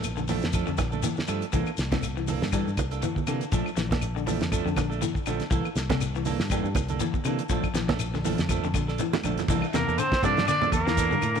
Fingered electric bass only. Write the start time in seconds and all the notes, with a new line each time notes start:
Already playing: A#1
0.43 F2
0.68 F2
0.78 A#1
1.28 G2
1.53 C2
1.78 C2
2.42 G2
2.67 G2
2.78 C2
3.27 C3
3.52 A#1
3.77 A#1
4.41 F2
4.65 F2
4.77 A#1
5.27 A#1
5.51 C2
5.75 C2
6.39 G2
6.64 G2
6.75 C2
7.25 C3
7.50 A#1
7.74 A#1
8.38 F2
8.64 F2
8.74 A#1
9.24 A#1
9.48 C2
9.74 E2
9.88 E2
10.12 muted fingered electric bass stroke
10.22 G2
10.73 E2
11.12 G2
11.23 A2